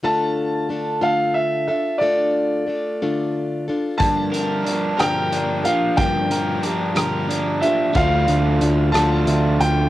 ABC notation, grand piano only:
X:1
M:6/8
L:1/8
Q:3/8=61
K:Dm
V:1 name="Grand piano"
a3 f e e | d4- d z | a3 g2 f | g4 z e |
f3 a2 g |]